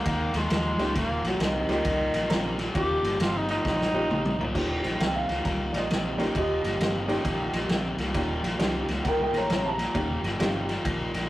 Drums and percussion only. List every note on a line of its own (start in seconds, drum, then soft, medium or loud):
0.05 kick loud
0.05 snare soft
0.05 ride medium
0.34 snare soft
0.34 ride medium
0.50 snare loud
0.50 ride medium
0.79 snare soft
0.79 ride medium
0.95 kick loud
0.95 snare soft
0.95 ride medium
1.24 snare soft
1.24 ride medium
1.40 snare loud
1.40 ride medium
1.69 snare soft
1.69 ride medium
1.85 kick loud
1.85 snare soft
1.85 ride medium
2.14 snare soft
2.14 ride medium
2.30 snare loud
2.30 ride medium
2.59 snare soft
2.59 ride medium
2.75 kick loud
2.75 ride medium
3.04 snare soft
3.04 ride medium
3.20 snare loud
3.20 ride medium
3.49 snare soft
3.49 ride medium
3.65 kick loud
3.65 snare medium
3.81 snare medium
4.11 mid tom medium
4.25 mid tom loud
4.41 floor tom medium
4.55 kick loud
4.55 snare soft
4.55 crash loud
4.84 snare soft
4.84 ride medium
5.00 snare loud
5.00 ride medium
5.29 snare soft
5.29 ride medium
5.45 kick loud
5.45 snare soft
5.45 ride medium
5.74 snare soft
5.74 ride medium
5.91 snare loud
5.91 ride medium
6.19 snare soft
6.19 ride medium
6.35 kick loud
6.35 ride medium
6.64 snare soft
6.64 ride medium
6.81 snare loud
6.81 ride medium
7.09 snare soft
7.09 ride medium
7.25 kick loud
7.25 snare soft
7.25 ride medium
7.53 snare soft
7.53 ride medium
7.69 snare loud
7.69 ride medium
7.98 snare soft
7.98 ride medium
8.14 kick loud
8.14 snare soft
8.14 ride medium
8.44 snare soft
8.44 ride medium
8.59 snare loud
8.59 ride medium
8.88 snare soft
8.88 ride medium
9.05 kick loud
9.05 snare soft
9.05 ride medium
9.34 snare soft
9.34 ride medium
9.50 snare loud
9.50 ride medium
9.79 snare soft
9.79 ride medium
9.95 kick loud
9.95 ride medium
10.24 snare soft
10.24 ride medium
10.40 snare loud
10.40 ride medium
10.69 snare soft
10.69 ride medium
10.85 kick loud
10.85 ride medium
11.14 snare soft
11.14 ride medium